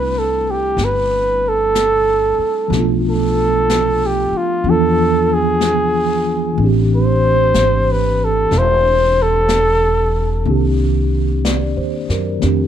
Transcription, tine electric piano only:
Already playing: G3 A3 C4 D4 E4
2.68 F3 A3
2.73 B3 D4
2.79 F4
4.65 E3 F3 B3 D4 F4
6.53 E3 A3
6.59 C4 D4
6.65 G4
10.45 D#3 A#3 C4 D4
10.50 G4
11.45 D5
11.77 C5
12.11 A#4
12.39 D#3 A3 C4
12.44 D4 G4

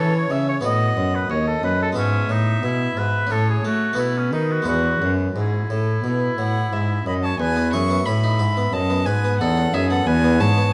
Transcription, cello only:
Already playing: E3
0.31 C#3
0.64 A2
0.97 F#2
1.30 D#2
1.63 F#2
1.96 G#2
2.29 A2
2.63 B2
2.96 G#2
3.29 A2
3.63 A3
3.98 B2
4.32 D#3
4.66 E2
5.01 F#2
5.35 G#2
5.70 A2
6.04 B2
6.37 A2
6.72 G#2
7.06 F#2
7.40 E2
7.73 F#2
8.07 A2
8.39 G#2
8.72 F#2
9.06 G#2
9.40 E2
9.73 F#2
10.07 E2
10.40 G#2

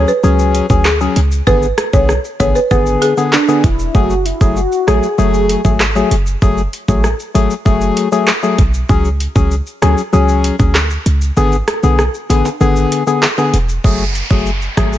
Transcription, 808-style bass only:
0.24 C#2
0.70 D2
1.16 C#2
1.47 G#1
1.93 B1
2.40 A1
2.71 G#1
3.64 E1
3.95 F#1
4.41 F#1
4.88 A1
5.18 F#1
5.65 G#1
6.11 F#1
6.42 F#1
6.88 A1
7.35 G#1
7.66 F#1
8.59 B1
8.89 C#2
9.36 C#2
9.82 D2
10.13 C#2
10.60 D2
11.06 C#2
11.37 G#1
11.83 B1
12.30 A1
12.61 G#1
13.53 E1
13.84 F#1
14.31 F#1
14.77 G#1

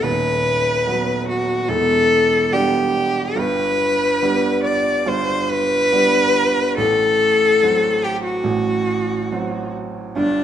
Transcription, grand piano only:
0.03 D#1 D#2
0.87 F#3 B3 F#4
1.68 E1 E2
2.52 G3 B3 D4
3.36 G1 G2
4.23 G3 B3 D4
5.06 G1 G2
5.93 G3 B3 D4
6.78 A1 A2
7.63 F#3 C4 F#4
8.44 A1 A2
9.32 F#3 C4 F#4
10.16 G1 G2

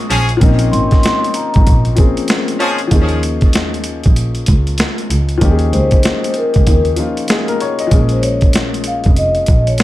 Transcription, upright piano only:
Already playing: F3 A#3 C4 C#4 G#4
0.37 F3 A#3 C4
0.42 C#4 D#4
1.96 F3 A#3 C4 C#4 G#4
2.87 F3 A#3 C#4
2.92 D#4 G#4
5.38 F3 A#3 C#4
5.43 D#4 G4
5.51 G#4
6.96 F3 A#3 C#4 D#4 F4
7.30 G#4
7.48 A#4
7.61 C#5
7.80 D#5
7.87 F3 G#3 A#3
7.92 C#4 G#4

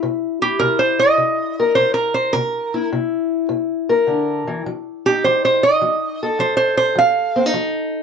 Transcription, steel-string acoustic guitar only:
Already playing: E4
0.03 C3
0.42 E4
0.61 C3
1.17 C3
1.60 A#4
1.77 C3
2.34 C3
2.74 E4
2.92 C3
3.49 C3
3.89 A#4
4.07 D3
4.47 E3
4.66 F3
5.07 D#4
5.25 F3
5.81 F3
6.23 A4
6.39 F3
6.96 F3
7.36 C4
7.46 D#4
7.54 F3

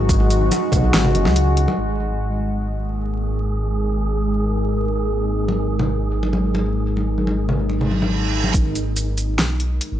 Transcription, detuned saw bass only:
Already playing: G#1
0.73 B1
0.94 G#1
1.15 F#1
1.26 C#2
1.78 G#1
8.54 G#1
9.39 B1
9.92 G#1

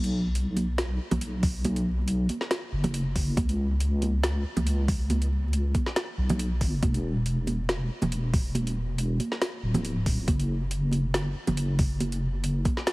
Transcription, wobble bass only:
Already playing: B1
1.11 B1
2.72 F#1
3.37 C#2
4.57 C#2
6.18 B1
6.61 G1
6.83 E1
8.02 E1
9.63 D1
10.28 F#1
11.48 F#1

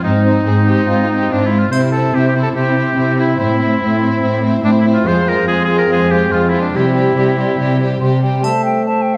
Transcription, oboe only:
0.04 D#4
1.32 D4
1.46 E4
1.59 F4
1.71 C5
1.92 A4
2.15 G4
2.28 G4
2.43 A4
2.55 G4
3.20 E4
3.40 E4
4.65 D4
4.81 E4
4.94 F4
5.07 C5
5.29 A#4
5.48 G#4
5.65 G#4
5.78 A#4
5.92 G#4
6.12 G4
6.31 F4
6.49 E4
6.61 D4
6.76 E4
8.45 E5
8.89 E5

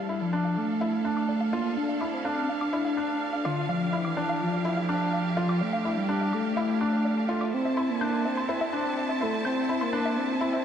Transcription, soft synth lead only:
Already playing: G3
0.21 F3
0.57 A3
1.53 A#3
1.77 D4
2.13 C4
2.49 D4
3.45 D3
3.69 F3
4.05 E3
4.42 F3
5.38 F3
5.62 A3
5.97 G3
6.34 A3
7.30 A3
7.54 C4
7.90 A#3
8.26 C4
9.22 A3
9.46 C4
9.81 A#3
10.18 C4

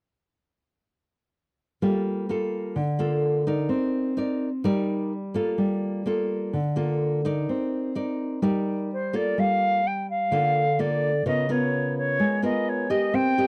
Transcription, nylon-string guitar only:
1.82 G3 A#3 F4 A4
2.29 A#3 F4 A4
2.76 D3
2.99 A#3 F4 A4
3.47 D#4 A#4 D5
3.69 C4
4.17 D#4 A#4 D5
4.64 G3 D#4 A#4 D5
5.34 A#3 F4 A4
5.58 G3
6.06 A#3 F4 A4
6.53 D3
6.76 A#3 F4 A4
7.25 D#4 A#4 D5
7.49 C4
7.95 D#4 A#4 D5
8.42 G3 D#4 A#4 D5
9.13 A#3 F4 A4
9.38 G3
10.32 D3 A#3 F4 A4
10.79 A#3 F4 A4
11.26 C#3 B3 F4 A#4
11.49 B3 F4 A#4
12.20 G#3
12.42 B3 F4 A#4
12.90 G4 A#4 D#5
13.14 C4
13.38 G4 A#4 D#5

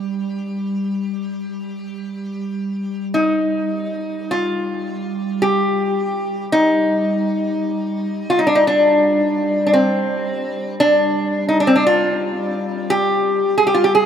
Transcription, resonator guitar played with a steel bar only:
Already playing: G4
3.14 D#4
4.31 F4
5.42 G4
6.52 D#4
8.30 F4
8.39 D#4
8.47 D4
8.55 D#4
8.67 D4
9.67 D4
9.73 C4
10.80 D4
11.49 D#4
11.60 D4
11.67 C4
11.76 D4
11.87 F4
12.90 G4
13.58 G#4
13.67 G4
13.74 F4
13.84 G4
13.95 G#4

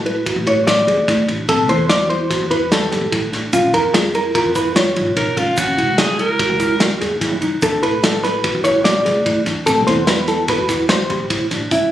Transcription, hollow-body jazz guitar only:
0.06 B4
0.47 C#5
0.67 D5
1.49 A4
1.69 C5
1.89 D5
2.10 C5
2.51 B4
2.72 A4
3.53 F4
3.74 A#4
3.94 G#4
4.15 A#4
4.35 A#4
4.56 B4
4.76 C#5
7.63 A4
7.83 B4
8.04 A4
8.24 B4
8.64 C#5
8.84 D5
9.66 A4
9.87 C5
10.08 B4
10.28 A4
10.49 B4
10.90 C5
11.72 E4

